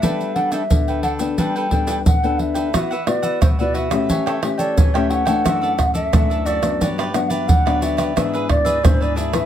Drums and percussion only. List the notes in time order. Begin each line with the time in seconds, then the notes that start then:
0.03 pandeiro, maracas, surdo
0.21 pandeiro, maracas
0.36 pandeiro
0.52 pandeiro, maracas
0.71 pandeiro, maracas, surdo
0.88 pandeiro, maracas
1.03 pandeiro
1.19 pandeiro, maracas
1.38 pandeiro, maracas, surdo
1.56 pandeiro, maracas
1.71 pandeiro, surdo
1.87 pandeiro, maracas
2.06 pandeiro, maracas, surdo
2.24 pandeiro, maracas
2.39 pandeiro
2.55 pandeiro, maracas
2.74 pandeiro, tamborim, maracas, surdo
2.92 pandeiro, maracas
3.07 pandeiro, tamborim
3.23 pandeiro, maracas
3.42 pandeiro, tamborim, maracas, surdo
3.59 pandeiro, maracas
3.75 pandeiro
3.91 pandeiro, tamborim, maracas
4.10 pandeiro, maracas, surdo
4.27 pandeiro, tamborim, maracas
4.43 pandeiro, tamborim
4.59 pandeiro, maracas
4.77 pandeiro, maracas, surdo
4.95 pandeiro, tamborim, maracas
5.10 pandeiro
5.27 pandeiro, tamborim, maracas
5.46 pandeiro, tamborim, maracas, surdo
5.63 pandeiro, maracas
5.79 pandeiro, tamborim, maracas, surdo
5.95 pandeiro, maracas
6.13 pandeiro, tamborim, maracas, surdo
6.31 pandeiro, maracas
6.46 pandeiro, maracas
6.63 pandeiro, tamborim, maracas
6.81 pandeiro, maracas, surdo
6.99 pandeiro, tamborim, maracas
7.14 pandeiro, tamborim, maracas
7.30 pandeiro, maracas
7.49 pandeiro, maracas, surdo
7.67 pandeiro, tamborim, maracas
7.82 pandeiro, maracas
7.98 pandeiro, tamborim, maracas
8.17 pandeiro, tamborim, maracas, surdo
8.35 pandeiro, maracas
8.49 pandeiro, tamborim, surdo
8.66 pandeiro, maracas
8.85 pandeiro, tamborim, maracas, surdo
9.02 pandeiro, maracas
9.17 pandeiro, maracas
9.33 pandeiro, tamborim, maracas